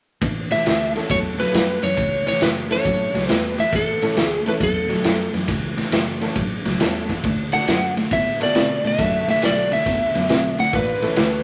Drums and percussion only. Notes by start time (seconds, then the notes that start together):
0.22 kick, ride
0.52 snare, ride
0.66 snare, ride
0.96 snare, ride
1.10 kick, ride
1.40 snare, ride
1.54 snare, ride
1.83 snare, ride
1.97 kick, ride
2.27 snare, ride
2.41 snare, ride
2.71 snare, ride
2.85 kick, ride
3.15 snare, ride
3.29 snare, ride
3.58 snare, ride
3.73 kick, snare, ride
4.02 snare, ride
4.17 snare, ride
4.46 snare, ride
4.60 kick, ride
4.90 snare, ride
5.04 snare, ride
5.34 snare, ride
5.48 kick, snare, ride
5.78 snare, ride
5.92 snare, ride
6.21 snare, ride
6.36 kick, ride
6.65 snare, ride
6.80 snare, ride
7.09 kick, snare, ride
7.24 kick, ride
7.54 snare, ride
7.68 snare, ride
7.97 snare, ride
8.11 kick, snare, ride
8.41 snare, ride
8.55 snare, ride
8.84 snare, ride
8.98 kick, snare, ride
9.28 snare, ride
9.42 snare, ride
9.72 snare, ride
9.86 kick, snare, ride
10.15 snare, ride
10.29 snare, ride
10.58 snare, ride
10.73 kick, ride
11.02 snare, ride
11.16 snare, ride